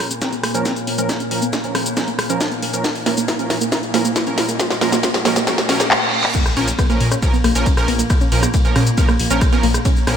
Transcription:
Already playing: A#2 A#3 F4 A#4 A#5, riser
0.11 C#4 C#5, closed hi-hat, shaker
0.22 F3 C#4 A#4, kick, snare, closed hi-hat, shaker
0.33 B3, closed hi-hat, shaker
0.43 A#3, cross-stick, open hi-hat
0.54 F3 C#4 A#4, closed hi-hat, shaker
0.65 C#4, kick, snare, closed hi-hat, shaker
0.76 closed hi-hat, shaker
0.87 B3, open hi-hat
0.98 F3 A#3 C#4 A#4, closed hi-hat, shaker
1.09 kick, snare, closed hi-hat, shaker
1.20 C#4, closed hi-hat, shaker
1.31 F3 C#4 A#4, open hi-hat
1.42 B3, closed hi-hat, shaker
1.53 A#3, kick, snare, closed hi-hat, shaker
1.64 F3 C#4 A#4, closed hi-hat, shaker
1.75 C#4, cross-stick, open hi-hat
1.86 closed hi-hat, shaker
1.97 F3 B3 C#4 A#4, kick, snare, closed hi-hat, shaker
2.08 A#3, closed hi-hat, shaker
2.19 cross-stick, open hi-hat
2.30 F3 C#4 A#4, closed hi-hat, shaker
2.41 kick, snare, closed hi-hat, shaker
2.52 B3, closed hi-hat, shaker
2.62 A#3, open hi-hat
2.73 F3 C#4 A#4, closed hi-hat, shaker
2.84 C#4, kick, snare, closed hi-hat, shaker
2.95 open hi-hat, shaker
3.06 F3 A#3 C#4 A#4, snare, open hi-hat
3.17 A#3, closed hi-hat, shaker
3.28 kick, snare, closed hi-hat, shaker
3.39 F3 C#4 A#4, closed hi-hat, shaker
3.50 snare, open hi-hat
3.61 A#3, closed hi-hat, shaker
3.72 C#4, kick, snare, closed hi-hat, shaker
3.83 closed hi-hat, shaker
3.94 F3 A#3 C#4 A#4 D#5, snare, open hi-hat
4.05 A#3, closed hi-hat, shaker
4.16 kick, snare, closed hi-hat, shaker
4.27 F3 C#4 A#4, closed hi-hat, shaker
4.38 snare, open hi-hat
4.49 A#3, closed hi-hat, shaker
4.60 C#4, kick, snare, closed hi-hat, shaker
4.70 snare, closed hi-hat, shaker
4.81 F3 A#3 C#4 A#4, snare, open hi-hat
4.92 A#3, snare, closed hi-hat, shaker
5.03 C#4, kick, snare, closed hi-hat, shaker
5.14 snare, closed hi-hat, shaker
5.25 F3 A#3 C#4 A#4, snare, open hi-hat
5.36 A#3, snare, closed hi-hat, shaker
5.47 F3 C#4 A#4, kick, snare, closed hi-hat, reverse cymbal, shaker
5.58 snare, closed hi-hat, shaker
5.69 F3 C#4 A#4, snare, open hi-hat
5.80 snare, closed hi-hat, shaker
5.91 clap
6.24 clap
6.35 A#2 A#3 F4, kick, closed hi-hat, crash, ride, impact, shaker
6.46 cross-stick, shaker
6.57 A#1 F3 C#4 A#4, open hi-hat
6.68 closed hi-hat, shaker
6.79 B3, kick, cross-stick, closed hi-hat, ride, shaker
6.90 F3 A#3 C#4 A#4, shaker
6.95 A#4
7.00 A#2, open hi-hat
7.11 C#4, cross-stick, closed hi-hat, shaker
7.22 F3 C#4 A#4, kick, closed hi-hat, ride, shaker
7.33 B3, shaker
7.44 A#1 A#3, cross-stick, open hi-hat
7.50 C#5
7.55 A#1 F3 C#4 A#4, closed hi-hat, shaker
7.66 C#4 A#5, kick, closed hi-hat, ride, shaker
7.77 F3 C#4 A#4, cross-stick, shaker
7.88 A#1 B3, open hi-hat
7.99 A#3, closed hi-hat, shaker
8.10 kick, cross-stick, closed hi-hat, ride, shaker
8.21 C#4, shaker
8.32 A#1 F3 C#4 A#4, open hi-hat
8.43 B3, cross-stick, closed hi-hat, shaker
8.54 A#3, kick, closed hi-hat, ride, shaker
8.65 F3 C#4 A#4, shaker
8.76 A#2 C#4, cross-stick, open hi-hat
8.87 closed hi-hat, shaker
8.98 F3 B3 C#4 A#4, kick, closed hi-hat, ride, shaker
9.09 A#3, cross-stick, shaker
9.19 A#1, open hi-hat
9.30 A#1 F3 C#4 A#4, closed hi-hat, shaker
9.41 kick, cross-stick, closed hi-hat, ride, shaker
9.52 F3 B3 C#4 A#4, shaker
9.63 A#1 A#3, open hi-hat
9.74 cross-stick, closed hi-hat, shaker
9.85 C#4, kick, closed hi-hat, ride, shaker
9.96 shaker
10.07 A#1 F3 B3 C#4 A#4, cross-stick, open hi-hat

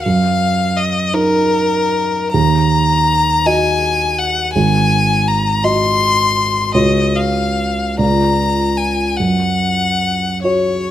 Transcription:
0.03 F#2 F5
0.77 D#5
1.13 D#4 A#4
2.32 D#2 A#5
3.46 F#4 D#5 G#5
4.19 F#5
4.53 G#1 G#5
5.28 A#5
5.64 F#4 D#5 C6
6.74 C#2 F#4 C#5 D#5
7.15 F5
7.98 C#2 F4 D5 A#5
8.77 G#5
9.17 F#2 F#5
10.43 F#4 C#5

